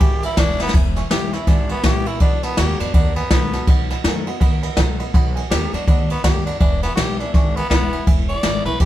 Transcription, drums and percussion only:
0.00 kick loud
0.00 ride loud
0.23 ride medium
0.37 kick medium
0.37 snare loud
0.37 ride loud
0.60 snare medium
0.69 snare medium
0.74 kick loud
0.74 crash loud
0.96 snare soft
0.96 ride medium
1.11 snare loud
1.11 ride medium
1.33 snare soft
1.33 ride medium
1.47 kick loud
1.47 snare soft
1.47 ride medium
1.69 ride medium
1.83 kick medium
1.83 snare loud
1.83 ride medium
2.06 ride medium
2.20 kick loud
2.20 ride medium
2.43 snare soft
2.43 ride medium
2.57 snare loud
2.57 ride loud
2.80 snare soft
2.80 ride medium
2.94 kick loud
2.94 ride medium
3.16 ride medium
3.30 kick medium
3.30 snare loud
3.30 ride medium
3.53 snare soft
3.53 ride medium
3.67 kick loud
3.67 ride medium
3.90 snare soft
3.90 ride medium
4.04 snare loud
4.04 ride medium
4.27 ride medium
4.41 kick loud
4.41 ride medium
4.63 ride medium
4.77 kick medium
4.77 snare loud
4.77 ride medium
5.00 ride medium
5.14 kick loud
5.14 ride medium
5.36 ride medium
5.51 snare loud
5.51 ride loud
5.74 snare soft
5.74 ride medium
5.88 kick loud
5.88 ride medium
6.10 ride medium
6.24 kick medium
6.24 snare loud
6.24 ride loud
6.47 ride medium
6.60 kick loud
6.60 ride medium
6.83 snare soft
6.83 ride medium
6.97 snare loud
6.97 ride medium
7.20 ride medium
7.34 kick loud
7.34 snare soft
7.34 ride medium
7.57 ride medium
7.71 kick medium
7.71 snare loud
7.71 ride medium
7.93 ride medium
8.07 kick loud
8.07 ride medium
8.29 ride medium
8.43 snare loud
8.43 ride medium
8.66 ride medium
8.80 kick loud
8.80 snare soft
8.80 ride loud

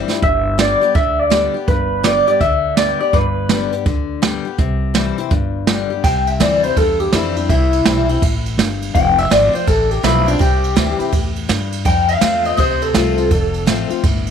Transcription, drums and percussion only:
0.10 snare medium
0.22 kick loud
0.22 closed hi-hat medium
0.59 snare loud
0.59 closed hi-hat medium
0.82 closed hi-hat medium
0.95 kick loud
0.95 closed hi-hat medium
1.31 snare loud
1.31 closed hi-hat medium
1.68 kick loud
1.68 closed hi-hat medium
2.04 snare loud
2.04 closed hi-hat medium
2.27 closed hi-hat medium
2.40 kick loud
2.40 closed hi-hat medium
2.77 snare loud
2.77 closed hi-hat medium
3.13 kick loud
3.13 closed hi-hat medium
3.49 snare loud
3.49 closed hi-hat medium
3.73 closed hi-hat medium
3.86 kick loud
3.86 closed hi-hat medium
4.23 snare loud
4.23 closed hi-hat medium
4.58 kick loud
4.58 closed hi-hat medium
4.95 snare loud
4.95 closed hi-hat medium
5.18 closed hi-hat medium
5.30 kick loud
5.30 closed hi-hat medium
5.67 snare loud
5.67 closed hi-hat medium
6.04 kick loud
6.04 crash medium
6.27 ride medium
6.40 snare loud
6.40 ride medium
6.63 ride medium
6.77 kick loud
6.77 ride medium
7.00 ride medium
7.13 snare loud
7.13 ride medium
7.36 ride medium
7.49 kick loud
7.49 ride medium
7.73 ride medium
7.85 snare loud
7.85 ride medium
8.09 ride medium
8.22 kick loud
8.22 ride medium
8.46 ride medium
8.59 snare loud
8.59 ride medium
8.82 ride medium
8.95 kick loud
8.95 ride medium
9.18 ride medium
9.31 snare loud
9.31 ride medium
9.55 ride medium
9.68 kick loud
9.68 ride medium
9.91 ride medium
10.04 snare loud
10.04 ride medium
10.28 ride medium
10.40 kick loud
10.40 ride medium
10.64 ride medium
10.77 snare loud
10.77 ride medium
11.00 ride medium
11.13 kick loud
11.13 ride medium
11.36 ride medium
11.49 snare loud
11.49 ride medium
11.72 ride medium
11.85 kick loud
11.85 ride medium
12.08 ride medium
12.21 snare loud
12.21 ride medium
12.45 ride medium
12.58 kick loud
12.58 ride medium
12.82 ride medium
12.95 snare loud
12.95 ride medium
13.18 ride medium
13.31 kick loud
13.31 ride medium
13.54 ride medium
13.67 snare loud
13.67 ride medium
13.90 ride medium
14.03 kick loud
14.03 ride medium
14.27 ride medium

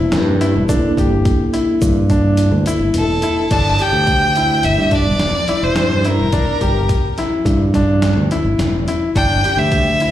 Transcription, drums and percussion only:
0.12 snare loud
0.12 closed hi-hat medium
0.41 closed hi-hat medium
0.69 kick loud
0.69 closed hi-hat medium
0.69 shaker medium
0.97 kick medium
0.97 closed hi-hat medium
0.97 shaker soft
1.25 kick loud
1.25 closed hi-hat medium
1.54 closed hi-hat medium
1.82 kick loud
1.82 closed hi-hat medium
1.82 shaker soft
2.10 kick medium
2.10 closed hi-hat medium
2.10 shaker soft
2.37 closed hi-hat medium
2.66 closed hi-hat medium
2.66 shaker soft
2.94 closed hi-hat medium
3.22 closed hi-hat medium
3.51 kick medium
3.51 closed hi-hat medium
3.51 crash medium
3.79 closed hi-hat medium
4.07 kick medium
4.07 closed hi-hat medium
4.36 closed hi-hat medium
4.63 closed hi-hat medium
4.91 kick medium
4.91 closed hi-hat medium
5.19 snare medium
5.19 closed hi-hat medium
5.48 snare soft
5.48 closed hi-hat medium
5.76 snare loud
5.76 closed hi-hat medium
6.05 closed hi-hat medium
6.32 kick medium
6.32 closed hi-hat medium
6.61 kick medium
6.61 closed hi-hat medium
6.89 kick medium
6.89 closed hi-hat medium
7.18 snare soft
7.18 closed hi-hat medium
7.46 kick medium
7.46 snare soft
7.46 closed hi-hat medium
7.74 kick medium
7.74 snare soft
7.74 closed hi-hat medium
8.02 snare medium
8.02 closed hi-hat medium
8.31 closed hi-hat medium
8.59 snare medium
8.59 closed hi-hat medium
8.88 closed hi-hat medium
9.16 kick medium
9.16 closed hi-hat medium
9.44 snare soft
9.44 closed hi-hat medium
9.72 kick medium
9.72 snare soft
9.72 closed hi-hat medium
10.00 closed hi-hat medium

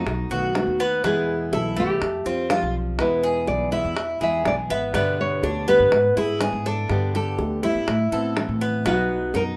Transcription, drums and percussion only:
0.07 high bongo medium
0.55 high bongo medium
0.55 low bongo medium
0.80 high bongo soft
1.04 high bongo medium
1.53 high bongo medium
2.02 high bongo medium
2.50 high bongo medium
2.50 low bongo medium
2.99 high bongo medium
3.23 high bongo soft
3.47 high bongo medium
3.72 high bongo soft
3.97 high bongo medium
4.45 high bongo medium
4.45 low bongo medium
4.70 high bongo soft
4.94 high bongo medium
5.43 high bongo medium
5.92 high bongo medium
6.41 high bongo medium
6.41 low bongo medium
6.90 high bongo medium
7.14 high bongo soft
7.39 high bongo medium
7.63 high bongo soft
7.88 high bongo medium
8.37 high bongo medium
8.37 low bongo medium
8.61 high bongo soft
8.86 high bongo medium
9.34 high bongo medium

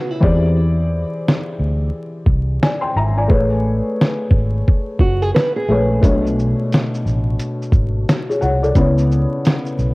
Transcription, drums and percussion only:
0.23 kick loud
1.28 snare loud
2.26 kick medium
2.63 snare loud
3.30 kick loud
4.01 snare loud
4.31 kick medium
4.68 kick medium
4.99 kick medium
5.36 snare loud
6.03 kick loud
6.03 closed hi-hat medium
6.03 shaker medium
6.27 shaker soft
6.39 shaker medium
6.72 snare loud
6.72 closed hi-hat medium
6.72 shaker medium
6.94 shaker soft
7.07 shaker soft
7.39 closed hi-hat medium
7.39 shaker medium
7.62 shaker soft
7.72 kick medium
7.72 shaker soft
8.09 snare loud
8.09 closed hi-hat medium
8.09 shaker medium
8.31 shaker soft
8.42 shaker medium
8.64 shaker soft
8.75 kick loud
8.75 closed hi-hat medium
8.75 shaker medium
8.98 shaker medium
9.11 shaker soft
9.45 snare loud
9.45 closed hi-hat medium
9.45 shaker medium
9.66 shaker soft
9.79 shaker soft

